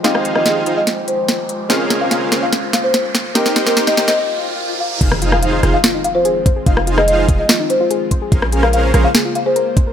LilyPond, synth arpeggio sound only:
\new Staff \with { instrumentName = "Synth arpeggio sound" } { \time 4/4 \key f \minor \tempo 4 = 145 r1 | r1 | r1 | ees'16 r16 f'16 aes'16 r16 c''16 aes'16 r16 f'16 ees'16 r16 f'16 aes'16 r16 c''16 aes'16 |
ees'16 r16 f'16 aes'16 r16 c''16 aes'16 r16 f'16 ees'16 r16 f'16 aes'16 r16 c''16 aes'16 | f'16 r16 aes'16 bes'16 r16 c''16 bes'16 r16 aes'16 f'16 r16 aes'16 bes'16 r16 c''16 bes'16 | }